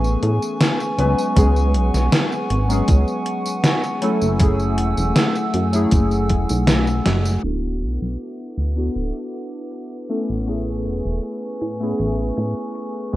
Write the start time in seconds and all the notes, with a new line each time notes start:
Already playing: A1 E3 A3 B3 C#4 G#4 B4 G#5 C#6
0.04 tambourine
0.23 A2, closed hi-hat
0.42 tambourine
0.60 snare, closed hi-hat, tambourine
0.80 tambourine
0.98 C#2 F#3 G#3 B3 C#4 B4 F#5, closed hi-hat
1.18 tambourine
1.35 C#2 F#3 G#3 B3 C#4 G#4, kick, closed hi-hat, tambourine
1.56 tambourine
1.74 B1, closed hi-hat
1.94 B1, snare, tambourine
2.12 snare, closed hi-hat, tambourine
2.32 tambourine
2.50 G#1, closed hi-hat
2.69 F#3 G#3 B3 C#4 G#4, tambourine
2.88 C#2, kick, closed hi-hat, tambourine
3.08 tambourine
3.26 closed hi-hat
3.46 tambourine
3.64 snare, closed hi-hat, tambourine
3.84 tambourine
4.02 F#3 A3 C#4 E4 A4 E6, closed hi-hat
4.22 F#1, tambourine
4.39 F#3 A3 C#4 E4 G#4, kick, closed hi-hat, tambourine
4.60 tambourine
4.78 E1, closed hi-hat
4.97 E1, tambourine
5.16 snare, closed hi-hat, tambourine
5.36 tambourine
5.54 F#2, closed hi-hat
5.72 F#3 A3 C#4 E4 G#4, closed hi-hat, tambourine
5.91 F#1, kick, closed hi-hat, tambourine
6.11 tambourine
6.29 E1, kick, closed hi-hat
6.49 B1, tambourine
6.67 snare, closed hi-hat, tambourine
6.87 tambourine
7.06 F#1, snare, closed hi-hat
7.25 tambourine
7.42 D1 B3 D4 E4 F#4 A4 B4 E5 F#5 D6, closed hi-hat
7.82 B1, closed hi-hat
8.02 B1
8.19 closed hi-hat
8.58 D2, closed hi-hat
8.76 B3 D4 E4 F#4 A4
8.96 D1, closed hi-hat
9.34 closed hi-hat
9.72 closed hi-hat
10.09 A3 B3 C#4 E4 A4 G#5 C#6, closed hi-hat
10.29 A1
10.46 A3 B3 C#4 E4 G#4, closed hi-hat
10.85 E1, closed hi-hat
11.05 E1
11.23 closed hi-hat
11.61 A2, closed hi-hat
11.80 A3 B3 C#4 E4 G#4
11.99 A1, closed hi-hat
12.37 A2, closed hi-hat
12.75 closed hi-hat
13.12 G#3 B3 C#4, closed hi-hat